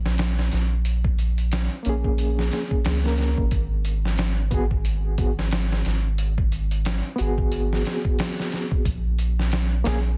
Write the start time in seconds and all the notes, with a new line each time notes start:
Already playing: A#1
0.06 snare
0.18 snare, closed hi-hat
0.39 snare
0.52 A#1, snare, closed hi-hat
0.85 closed hi-hat
1.04 kick
1.19 closed hi-hat
1.38 closed hi-hat
1.52 snare, closed hi-hat
1.83 A#1 A#3 C#4, closed hi-hat
1.89 G#4
2.04 kick
2.18 closed hi-hat
2.39 snare
2.52 snare, closed hi-hat
2.71 kick
2.85 C#2, snare, open hi-hat
3.04 A#3 C#4 A#4, snare
3.18 snare, closed hi-hat
3.38 G#1, kick
3.51 G#1, kick, closed hi-hat
3.85 closed hi-hat
4.05 snare
4.18 snare, closed hi-hat
4.51 G#1 B3 F#4 G#4, kick, closed hi-hat
4.71 kick
4.85 closed hi-hat
5.18 G#1 B3 F#4 G#4, kick, closed hi-hat
5.39 snare
5.51 snare, closed hi-hat
5.72 snare
5.85 G#1, snare, closed hi-hat
6.18 closed hi-hat
6.38 kick
6.52 closed hi-hat
6.71 closed hi-hat
6.85 snare, closed hi-hat
7.16 B3 F#4, closed hi-hat
7.20 G#1 G#4
7.38 kick
7.52 closed hi-hat
7.73 snare
7.86 snare, closed hi-hat
8.05 kick
8.19 snare, open hi-hat
8.40 snare
8.52 snare, closed hi-hat
8.71 kick
8.85 A#1, kick, closed hi-hat
9.19 closed hi-hat
9.39 snare
9.52 snare, closed hi-hat
9.84 A#1 A#3 C#4 G#4, snare, closed hi-hat